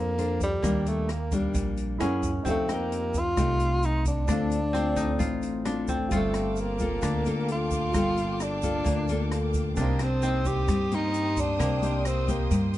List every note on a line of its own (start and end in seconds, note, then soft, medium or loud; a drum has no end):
0.00 0.59 F2 medium
0.00 0.61 F3 medium
0.00 1.70 A3 medium
0.00 0.42 A#3 medium
0.00 1.19 C4 medium
0.00 0.14 D4 medium
0.00 0.14 A4 medium
0.00 0.14 C5 medium
0.00 0.61 A5 medium
0.18 0.47 D4 medium
0.18 0.47 A4 soft
0.18 0.47 C5 medium
0.18 closed hi-hat soft
0.41 0.90 G3 medium
0.41 kick medium
0.41 closed hi-hat soft
0.41 shaker medium
0.62 1.51 D#2 medium
0.62 1.52 D#3 medium
0.62 1.09 G3 medium
0.62 3.41 A#3 medium
0.62 1.09 A#3 soft
0.62 1.09 D4 medium
0.62 1.97 A#4 soft
0.62 1.98 D5 soft
0.62 kick medium
0.62 cross-stick medium
0.62 closed hi-hat medium
0.62 shaker medium
0.67 1.99 G5 medium
0.86 1.13 A3 medium
0.86 closed hi-hat soft
0.86 shaker soft
1.09 1.36 A#3 medium
1.09 cross-stick medium
1.09 closed hi-hat soft
1.32 1.97 G3 medium
1.32 1.79 G3 medium
1.32 1.97 A#3 medium
1.32 1.97 D4 medium
1.32 kick medium
1.32 closed hi-hat soft
1.32 shaker medium
1.54 1.97 A#1 medium
1.54 1.98 A#2 medium
1.54 kick medium
1.54 closed hi-hat medium
1.54 shaker medium
1.77 closed hi-hat soft
1.77 shaker soft
1.98 2.42 F#2 loud
1.98 2.30 A#3 medium
1.98 2.51 C#4 medium
1.98 2.45 E4 medium
1.98 2.30 E4 medium
1.98 2.45 G#4 medium
1.98 2.30 G#4 medium
1.98 2.46 A#4 medium
1.98 2.46 F#5 medium
1.98 cross-stick medium
1.98 closed hi-hat soft
2.23 kick medium
2.23 closed hi-hat soft
2.23 shaker medium
2.42 3.33 F2 medium
2.42 3.35 F3 medium
2.42 2.65 A3 medium
2.42 4.73 C4 medium
2.42 4.23 D#4 medium
2.42 2.65 D#4 medium
2.42 4.24 G4 soft
2.42 4.25 A4 soft
2.42 kick medium
2.42 closed hi-hat medium
2.42 shaker medium
2.47 2.75 A3 medium
2.47 2.65 G4 medium
2.47 4.26 F5 medium
2.69 3.34 D#4 medium
2.69 3.34 G4 medium
2.69 cross-stick medium
2.69 closed hi-hat soft
2.69 shaker soft
2.74 3.20 A#3 medium
2.92 closed hi-hat soft
3.14 kick medium
3.14 closed hi-hat soft
3.14 shaker medium
3.19 3.87 F4 loud
3.37 4.25 C2 medium
3.37 4.26 C3 medium
3.37 4.25 A3 medium
3.37 4.25 D#4 medium
3.37 4.25 G4 medium
3.37 kick medium
3.37 cross-stick medium
3.37 closed hi-hat medium
3.37 shaker medium
3.60 closed hi-hat soft
3.60 shaker soft
3.83 4.07 D#4 loud
3.83 closed hi-hat soft
3.83 shaker soft
4.05 5.62 D4 medium
4.05 kick medium
4.05 closed hi-hat soft
4.05 shaker medium
4.25 5.16 D2 medium
4.25 5.18 D3 medium
4.25 4.58 A3 medium
4.25 4.58 C4 soft
4.25 6.06 D4 soft
4.25 5.02 D4 medium
4.25 6.07 A4 soft
4.25 kick medium
4.25 cross-stick medium
4.25 closed hi-hat medium
4.25 shaker medium
4.29 4.59 F4 medium
4.29 6.08 C5 soft
4.29 6.09 F5 medium
4.51 closed hi-hat soft
4.51 shaker soft
4.73 5.62 A3 soft
4.73 5.88 C4 medium
4.73 5.63 C4 medium
4.73 5.63 F4 medium
4.73 cross-stick medium
4.73 closed hi-hat soft
4.96 5.71 D#4 loud
4.96 kick medium
4.96 closed hi-hat soft
4.96 shaker medium
5.19 6.07 A1 medium
5.19 6.09 A2 medium
5.19 6.11 F4 medium
5.19 kick medium
5.19 closed hi-hat medium
5.19 shaker medium
5.42 closed hi-hat soft
5.42 shaker soft
5.65 5.96 A3 medium
5.65 5.97 C4 medium
5.65 7.02 D4 medium
5.65 5.97 F4 medium
5.65 cross-stick medium
5.65 closed hi-hat soft
5.88 8.49 C4 medium
5.88 kick soft
5.88 closed hi-hat soft
5.88 shaker medium
6.08 6.99 G1 medium
6.08 7.01 G3 medium
6.08 7.89 F4 medium
6.08 8.30 F4 medium
6.08 7.90 A4 soft
6.08 9.74 F5 medium
6.08 kick medium
6.08 closed hi-hat medium
6.08 shaker medium
6.12 6.62 A3 medium
6.12 6.77 F4 soft
6.12 6.77 A4 medium
6.12 9.74 G5 medium
6.12 7.92 G5 medium
6.12 9.74 A5 medium
6.12 9.74 D6 medium
6.34 cross-stick medium
6.34 closed hi-hat soft
6.34 shaker soft
6.56 closed hi-hat soft
6.56 shaker medium
6.60 7.50 A#3 medium
6.79 7.22 A#3 medium
6.79 7.22 F4 medium
6.79 7.22 A4 medium
6.79 kick medium
6.79 closed hi-hat soft
6.79 shaker medium
7.02 7.90 D2 medium
7.02 7.92 D3 medium
7.02 9.45 D4 medium
7.02 kick medium
7.02 cross-stick medium
7.02 closed hi-hat medium
7.02 shaker medium
7.25 7.91 A#3 medium
7.25 7.91 F4 medium
7.25 7.91 A4 medium
7.25 closed hi-hat soft
7.25 shaker soft
7.48 8.44 F4 loud
7.48 closed hi-hat soft
7.71 kick medium
7.71 closed hi-hat soft
7.71 shaker medium
7.92 8.82 G1 medium
7.92 8.84 G3 medium
7.92 8.59 A#3 medium
7.92 9.72 F4 soft
7.92 8.60 F4 medium
7.92 9.73 A4 soft
7.92 kick medium
7.92 cross-stick medium
7.92 closed hi-hat medium
7.92 shaker medium
7.96 8.60 A4 medium
7.96 9.75 G5 medium
8.17 closed hi-hat soft
8.17 shaker soft
8.40 9.55 D4 medium
8.40 cross-stick medium
8.40 closed hi-hat soft
8.40 shaker medium
8.62 9.05 A#3 medium
8.62 9.05 F4 medium
8.62 9.05 A4 medium
8.62 kick medium
8.62 closed hi-hat soft
8.62 shaker medium
8.84 9.73 D2 medium
8.84 9.75 D3 medium
8.84 11.59 A#3 medium
8.84 kick medium
8.84 closed hi-hat medium
8.84 shaker medium
9.08 9.74 A#3 medium
9.08 9.74 F4 medium
9.08 9.74 A4 medium
9.08 closed hi-hat soft
9.08 shaker soft
9.31 cross-stick medium
9.31 closed hi-hat soft
9.54 kick medium
9.54 closed hi-hat soft
9.54 shaker medium
9.74 10.64 C2 medium
9.74 10.66 C3 medium
9.74 10.07 A#3 medium
9.74 11.55 C4 soft
9.74 12.20 D4 medium
9.74 10.07 D#4 medium
9.74 10.07 G4 medium
9.74 11.56 A#4 soft
9.74 12.78 C5 medium
9.74 11.57 C5 soft
9.74 12.78 G5 medium
9.74 12.78 C6 medium
9.74 12.78 D#6 medium
9.74 kick medium
9.74 closed hi-hat medium
9.74 shaker medium
9.80 10.05 A#3 medium
9.80 11.58 G5 medium
9.99 10.49 C4 loud
9.99 cross-stick medium
9.99 closed hi-hat soft
9.99 shaker soft
10.22 10.88 A#3 medium
10.22 12.78 C4 loud
10.22 10.88 D#4 medium
10.22 10.88 G4 medium
10.22 closed hi-hat soft
10.22 shaker medium
10.45 10.96 G4 loud
10.45 kick medium
10.45 closed hi-hat soft
10.45 shaker medium
10.68 11.56 G2 medium
10.68 11.58 G3 medium
10.68 kick medium
10.68 cross-stick medium
10.68 closed hi-hat medium
10.68 shaker medium
10.91 11.79 A#3 medium
10.91 11.41 D#4 loud
10.91 11.80 G4 medium
10.91 closed hi-hat soft
10.91 shaker soft
11.14 closed hi-hat soft
11.14 shaker medium
11.37 12.09 D4 loud
11.37 kick medium
11.37 closed hi-hat soft
11.37 shaker medium
11.57 12.47 C2 medium
11.57 12.49 C3 medium
11.57 12.78 A#3 medium
11.57 12.78 C4 soft
11.57 12.78 A#4 soft
11.57 12.78 C5 soft
11.57 kick medium
11.57 cross-stick medium
11.57 closed hi-hat medium
11.57 shaker medium
11.63 12.78 G5 medium
11.82 12.24 A#3 medium
11.82 12.24 D#4 medium
11.82 12.25 G4 medium
11.82 closed hi-hat soft
11.82 shaker soft
12.05 12.32 C4 medium
12.05 cross-stick medium
12.05 closed hi-hat soft
12.05 shaker medium
12.28 12.78 A#3 medium
12.28 12.75 A#3 medium
12.28 12.78 D#4 medium
12.28 12.78 G4 medium
12.28 kick medium
12.28 closed hi-hat soft
12.28 shaker medium
12.51 12.78 G2 medium
12.51 12.78 G3 medium
12.51 kick medium
12.51 closed hi-hat medium
12.51 shaker medium
12.74 closed hi-hat soft
12.74 shaker soft